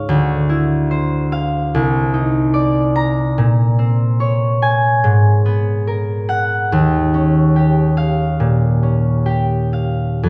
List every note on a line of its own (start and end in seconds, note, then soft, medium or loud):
0.00 0.12 C#2 medium
0.00 0.12 G#2 medium
0.00 0.12 D#4 soft
0.00 0.11 C#5 medium
0.00 1.31 F5 medium
0.09 1.77 D2 medium
0.49 1.77 E4 medium
0.91 4.81 C5 soft
1.32 1.77 F5 medium
1.75 3.42 C2 medium
2.14 3.41 D#4 soft
2.54 3.41 D5 medium
2.96 6.86 A#5 medium
3.38 5.08 A#2 medium
3.79 5.08 C4 medium
4.20 5.08 C#5 medium
4.62 6.77 G#5 medium
5.04 6.76 G#2 medium
5.45 6.76 B3 medium
5.87 9.77 A#4 medium
6.29 6.76 F#5 medium
6.72 10.28 D#2 medium
7.14 8.82 C#4 medium
7.56 9.25 G4 soft
7.97 9.72 F5 medium
8.40 10.28 A#2 medium
8.83 10.28 C#4 soft
9.26 10.29 G4 medium
9.73 10.29 F5 soft
10.23 10.29 F2 medium